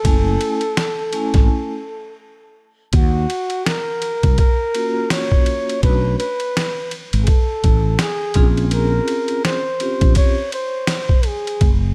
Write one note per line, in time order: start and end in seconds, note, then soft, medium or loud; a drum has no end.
0.00 0.57 A3 medium
0.00 2.21 A4 medium
0.04 0.36 F#1 medium
0.04 0.58 C#4 medium
0.04 0.58 E4 medium
0.04 0.58 G#5 medium
0.04 kick loud
0.04 ride medium
0.41 ride medium
0.61 ride soft
0.77 snare loud
0.77 hi-hat pedal soft
0.77 ride medium
1.13 1.66 A3 medium
1.13 1.66 C#4 medium
1.13 1.66 E4 medium
1.13 1.67 G#5 medium
1.13 ride medium
1.34 1.47 G#1 medium
1.34 kick loud
1.34 snare soft
1.34 ride soft
2.93 3.25 D#2 loud
2.93 3.67 F#4 medium
2.93 kick medium
2.93 ride medium
3.30 ride medium
3.50 ride soft
3.66 4.38 A#4 medium
3.66 snare loud
3.66 hi-hat pedal soft
3.66 ride medium
4.02 ride medium
4.23 4.37 C2 medium
4.23 kick loud
4.23 ride medium
4.38 5.07 A#4 loud
4.38 kick loud
4.38 ride medium
4.75 5.77 A#3 medium
4.75 5.77 C#4 medium
4.75 5.77 F4 medium
4.75 5.77 F#4 medium
4.75 ride medium
5.10 5.79 C#5 loud
5.10 snare loud
5.10 hi-hat pedal medium
5.10 ride medium
5.32 kick medium
5.46 ride medium
5.69 ride soft
5.83 6.15 B1 medium
5.83 6.10 A3 medium
5.83 6.10 C#4 medium
5.83 6.10 D4 medium
5.83 6.10 F#4 medium
5.83 6.17 B4 loud
5.83 kick loud
5.83 ride medium
6.19 6.98 B4 medium
6.19 ride medium
6.40 ride soft
6.57 snare loud
6.57 hi-hat pedal soft
6.57 ride medium
6.91 ride medium
7.13 7.26 G#1 medium
7.13 ride medium
7.23 7.29 G#4 medium
7.23 ride medium
7.28 8.00 A4 loud
7.28 kick medium
7.64 7.96 A1 medium
7.64 kick medium
7.64 ride medium
7.99 8.54 G#4 medium
7.99 snare loud
7.99 hi-hat pedal medium
7.99 ride medium
8.34 8.99 A#1 loud
8.34 9.54 C4 medium
8.34 9.54 C#4 medium
8.34 9.55 F4 medium
8.34 9.55 G#4 medium
8.34 kick loud
8.34 ride medium
8.57 ride soft
8.71 9.40 A#4 medium
8.71 ride medium
9.08 ride medium
9.28 ride soft
9.45 10.13 C5 medium
9.45 snare loud
9.45 hi-hat pedal soft
9.45 ride medium
9.80 10.33 C4 medium
9.80 10.34 C#4 medium
9.80 10.34 F4 medium
9.80 10.34 G4 medium
9.80 ride soft
10.01 10.15 A#1 medium
10.01 kick loud
10.01 ride soft
10.15 10.50 C#5 loud
10.15 kick medium
10.15 ride medium
10.52 11.28 C5 medium
10.52 ride medium
10.87 snare loud
10.87 hi-hat pedal medium
10.87 ride medium
11.09 kick medium
11.23 11.73 G#4 medium
11.23 ride medium
11.47 ride soft
11.61 11.93 F#1 medium
11.61 kick medium
11.61 ride medium